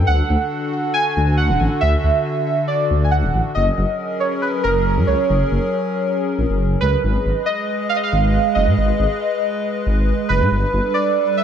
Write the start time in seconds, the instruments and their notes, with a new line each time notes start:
Already playing: analog synth pad D4 A4
0.07 detuned saw bass D2, analog synth pad D3 F#4, synth keys F#5
0.30 detuned saw bass D2
0.94 synth keys G#5
1.17 detuned saw bass D2
1.37 synth keys F#5
1.49 detuned saw bass D1
1.60 detuned saw bass A1
1.81 detuned saw bass D2, synth keys E5
2.04 detuned saw bass D2
2.68 synth keys D5
2.91 detuned saw bass D2
3.04 synth keys G#5
3.11 synth keys F#5
3.23 detuned saw bass D1
3.34 detuned saw bass A1
3.55 detuned saw bass F#1, analog synth pad F#3 C#4 G#4 A#4, synth keys D#5
3.78 detuned saw bass F#1
4.20 synth keys C#5
4.42 synth keys B4
4.64 detuned saw bass F#1, synth keys A#4
4.97 detuned saw bass F#2
5.07 detuned saw bass C#2, synth keys C#5
5.30 detuned saw bass F#1
5.52 detuned saw bass F#1
6.39 detuned saw bass A#1
6.50 detuned saw bass F#1
6.81 detuned saw bass C#2, synth keys B4
7.04 detuned saw bass G#1, analog synth pad G#3 G#4 B4 D#5
7.26 detuned saw bass G#1
7.46 synth keys D#5
7.89 synth keys F5
7.96 synth keys D#5
8.03 synth keys F5
8.13 detuned saw bass G#1
8.55 detuned saw bass F#1, synth keys D#5
8.67 detuned saw bass G#2
8.78 detuned saw bass G#1
9.00 detuned saw bass G#1
9.86 detuned saw bass G#1
10.29 detuned saw bass F#1, synth keys B4
10.41 detuned saw bass G#2
10.52 detuned saw bass G1, analog synth pad G3 D4 A4
10.73 detuned saw bass G1
10.94 synth keys D5
11.37 synth keys E5